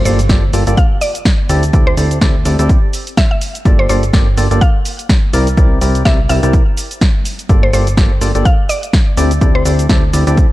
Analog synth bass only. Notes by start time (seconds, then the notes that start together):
0.05 G1
0.29 G1
0.53 G1
0.67 G1
1.49 D2
1.73 D2
1.97 D2
2.21 D2
2.45 D2
2.59 D2
3.65 G1
3.89 G1
4.13 G1
4.37 G1
4.51 G1
5.33 C2
5.57 C2
5.81 C2
6.05 C2
6.29 C2
6.43 C2
7.49 G1
7.73 G1
7.97 G1
8.21 G1
8.35 G1
9.17 D2
9.41 D2
9.65 D2
9.89 D2
10.13 D2
10.27 D2